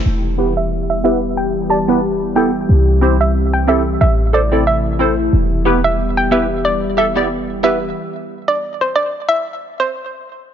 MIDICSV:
0, 0, Header, 1, 5, 480
1, 0, Start_track
1, 0, Key_signature, 1, "minor"
1, 0, Tempo, 659341
1, 39, Time_signature, 4, 2, 24, 8
1, 7672, End_track
2, 0, Start_track
2, 0, Title_t, "Synth pluck"
2, 0, Program_c, 0, 84
2, 414, Note_on_c, 0, 76, 70
2, 499, Note_off_c, 0, 76, 0
2, 654, Note_on_c, 0, 76, 75
2, 739, Note_off_c, 0, 76, 0
2, 760, Note_on_c, 0, 76, 81
2, 868, Note_off_c, 0, 76, 0
2, 1000, Note_on_c, 0, 79, 77
2, 1108, Note_off_c, 0, 79, 0
2, 1239, Note_on_c, 0, 81, 90
2, 1347, Note_off_c, 0, 81, 0
2, 1719, Note_on_c, 0, 79, 79
2, 1827, Note_off_c, 0, 79, 0
2, 2334, Note_on_c, 0, 76, 64
2, 2419, Note_off_c, 0, 76, 0
2, 2573, Note_on_c, 0, 79, 70
2, 2659, Note_off_c, 0, 79, 0
2, 2681, Note_on_c, 0, 76, 77
2, 2789, Note_off_c, 0, 76, 0
2, 2919, Note_on_c, 0, 76, 79
2, 3028, Note_off_c, 0, 76, 0
2, 3160, Note_on_c, 0, 74, 83
2, 3268, Note_off_c, 0, 74, 0
2, 3400, Note_on_c, 0, 76, 86
2, 3752, Note_off_c, 0, 76, 0
2, 4254, Note_on_c, 0, 76, 81
2, 4339, Note_off_c, 0, 76, 0
2, 4494, Note_on_c, 0, 79, 78
2, 4579, Note_off_c, 0, 79, 0
2, 4600, Note_on_c, 0, 76, 79
2, 4708, Note_off_c, 0, 76, 0
2, 4840, Note_on_c, 0, 74, 82
2, 4948, Note_off_c, 0, 74, 0
2, 5081, Note_on_c, 0, 76, 80
2, 5189, Note_off_c, 0, 76, 0
2, 5561, Note_on_c, 0, 76, 80
2, 5668, Note_off_c, 0, 76, 0
2, 6174, Note_on_c, 0, 74, 72
2, 6259, Note_off_c, 0, 74, 0
2, 6415, Note_on_c, 0, 72, 69
2, 6500, Note_off_c, 0, 72, 0
2, 6519, Note_on_c, 0, 74, 83
2, 6628, Note_off_c, 0, 74, 0
2, 6760, Note_on_c, 0, 76, 86
2, 6868, Note_off_c, 0, 76, 0
2, 7133, Note_on_c, 0, 72, 76
2, 7219, Note_off_c, 0, 72, 0
2, 7672, End_track
3, 0, Start_track
3, 0, Title_t, "Synth stab"
3, 0, Program_c, 1, 62
3, 275, Note_on_c, 1, 59, 74
3, 278, Note_on_c, 1, 64, 69
3, 282, Note_on_c, 1, 67, 71
3, 286, Note_on_c, 1, 71, 82
3, 385, Note_off_c, 1, 59, 0
3, 387, Note_off_c, 1, 64, 0
3, 388, Note_off_c, 1, 67, 0
3, 390, Note_off_c, 1, 71, 0
3, 755, Note_on_c, 1, 59, 77
3, 759, Note_on_c, 1, 64, 66
3, 763, Note_on_c, 1, 67, 70
3, 766, Note_on_c, 1, 71, 79
3, 865, Note_off_c, 1, 59, 0
3, 867, Note_off_c, 1, 64, 0
3, 869, Note_off_c, 1, 67, 0
3, 870, Note_off_c, 1, 71, 0
3, 1234, Note_on_c, 1, 67, 74
3, 1245, Note_on_c, 1, 74, 81
3, 1291, Note_off_c, 1, 67, 0
3, 1296, Note_off_c, 1, 74, 0
3, 1369, Note_on_c, 1, 59, 68
3, 1372, Note_on_c, 1, 64, 64
3, 1375, Note_on_c, 1, 67, 63
3, 1379, Note_on_c, 1, 71, 75
3, 1456, Note_off_c, 1, 59, 0
3, 1457, Note_off_c, 1, 64, 0
3, 1459, Note_off_c, 1, 67, 0
3, 1461, Note_off_c, 1, 71, 0
3, 1714, Note_on_c, 1, 59, 72
3, 1718, Note_on_c, 1, 64, 68
3, 1721, Note_on_c, 1, 67, 67
3, 1725, Note_on_c, 1, 69, 82
3, 1825, Note_off_c, 1, 59, 0
3, 1826, Note_off_c, 1, 64, 0
3, 1828, Note_off_c, 1, 67, 0
3, 1830, Note_off_c, 1, 69, 0
3, 2194, Note_on_c, 1, 60, 73
3, 2198, Note_on_c, 1, 64, 71
3, 2201, Note_on_c, 1, 67, 66
3, 2205, Note_on_c, 1, 72, 79
3, 2304, Note_off_c, 1, 60, 0
3, 2306, Note_off_c, 1, 64, 0
3, 2308, Note_off_c, 1, 67, 0
3, 2310, Note_off_c, 1, 72, 0
3, 2674, Note_on_c, 1, 60, 76
3, 2678, Note_on_c, 1, 64, 68
3, 2682, Note_on_c, 1, 67, 65
3, 2685, Note_on_c, 1, 69, 82
3, 2784, Note_off_c, 1, 60, 0
3, 2786, Note_off_c, 1, 64, 0
3, 2788, Note_off_c, 1, 67, 0
3, 2790, Note_off_c, 1, 69, 0
3, 3154, Note_on_c, 1, 69, 77
3, 3164, Note_on_c, 1, 72, 83
3, 3210, Note_off_c, 1, 69, 0
3, 3216, Note_off_c, 1, 72, 0
3, 3289, Note_on_c, 1, 60, 69
3, 3292, Note_on_c, 1, 64, 65
3, 3295, Note_on_c, 1, 69, 60
3, 3299, Note_on_c, 1, 74, 75
3, 3376, Note_off_c, 1, 60, 0
3, 3377, Note_off_c, 1, 64, 0
3, 3379, Note_off_c, 1, 69, 0
3, 3381, Note_off_c, 1, 74, 0
3, 3634, Note_on_c, 1, 60, 74
3, 3637, Note_on_c, 1, 64, 66
3, 3641, Note_on_c, 1, 69, 67
3, 3645, Note_on_c, 1, 72, 83
3, 3744, Note_off_c, 1, 60, 0
3, 3746, Note_off_c, 1, 64, 0
3, 3748, Note_off_c, 1, 69, 0
3, 3750, Note_off_c, 1, 72, 0
3, 4115, Note_on_c, 1, 59, 76
3, 4118, Note_on_c, 1, 64, 67
3, 4122, Note_on_c, 1, 67, 69
3, 4126, Note_on_c, 1, 71, 80
3, 4225, Note_off_c, 1, 59, 0
3, 4226, Note_off_c, 1, 64, 0
3, 4229, Note_off_c, 1, 67, 0
3, 4230, Note_off_c, 1, 71, 0
3, 4595, Note_on_c, 1, 59, 74
3, 4598, Note_on_c, 1, 64, 68
3, 4601, Note_on_c, 1, 67, 71
3, 4605, Note_on_c, 1, 71, 82
3, 4705, Note_off_c, 1, 59, 0
3, 4706, Note_off_c, 1, 64, 0
3, 4708, Note_off_c, 1, 67, 0
3, 4710, Note_off_c, 1, 71, 0
3, 5074, Note_on_c, 1, 67, 71
3, 5085, Note_on_c, 1, 69, 86
3, 5131, Note_off_c, 1, 67, 0
3, 5136, Note_off_c, 1, 69, 0
3, 5208, Note_on_c, 1, 59, 66
3, 5212, Note_on_c, 1, 64, 64
3, 5216, Note_on_c, 1, 67, 64
3, 5219, Note_on_c, 1, 74, 79
3, 5296, Note_off_c, 1, 59, 0
3, 5298, Note_off_c, 1, 64, 0
3, 5299, Note_off_c, 1, 67, 0
3, 5301, Note_off_c, 1, 74, 0
3, 5554, Note_on_c, 1, 59, 74
3, 5558, Note_on_c, 1, 64, 65
3, 5561, Note_on_c, 1, 67, 70
3, 5565, Note_on_c, 1, 71, 78
3, 5664, Note_off_c, 1, 59, 0
3, 5666, Note_off_c, 1, 64, 0
3, 5668, Note_off_c, 1, 67, 0
3, 5670, Note_off_c, 1, 71, 0
3, 7672, End_track
4, 0, Start_track
4, 0, Title_t, "Analog synth pad"
4, 0, Program_c, 2, 89
4, 39, Note_on_c, 2, 55, 68
4, 39, Note_on_c, 2, 67, 81
4, 40, Note_on_c, 2, 52, 71
4, 40, Note_on_c, 2, 59, 67
4, 1940, Note_off_c, 2, 59, 0
4, 1960, Note_on_c, 2, 60, 65
4, 2891, Note_off_c, 2, 55, 0
4, 2891, Note_off_c, 2, 67, 0
4, 2910, Note_off_c, 2, 60, 0
4, 2919, Note_on_c, 2, 64, 82
4, 2920, Note_on_c, 2, 48, 73
4, 2920, Note_on_c, 2, 57, 64
4, 3870, Note_off_c, 2, 48, 0
4, 3870, Note_off_c, 2, 57, 0
4, 3870, Note_off_c, 2, 64, 0
4, 3878, Note_on_c, 2, 59, 68
4, 3878, Note_on_c, 2, 67, 78
4, 3879, Note_on_c, 2, 55, 66
4, 5771, Note_off_c, 2, 52, 0
4, 5780, Note_off_c, 2, 55, 0
4, 5780, Note_off_c, 2, 59, 0
4, 5780, Note_off_c, 2, 67, 0
4, 7672, End_track
5, 0, Start_track
5, 0, Title_t, "808-style bass"
5, 0, Program_c, 3, 38
5, 40, Note_on_c, 3, 28, 82
5, 1931, Note_off_c, 3, 28, 0
5, 1959, Note_on_c, 3, 36, 85
5, 2890, Note_off_c, 3, 36, 0
5, 2919, Note_on_c, 3, 33, 83
5, 3850, Note_off_c, 3, 33, 0
5, 3879, Note_on_c, 3, 28, 86
5, 5770, Note_off_c, 3, 28, 0
5, 7672, End_track
0, 0, End_of_file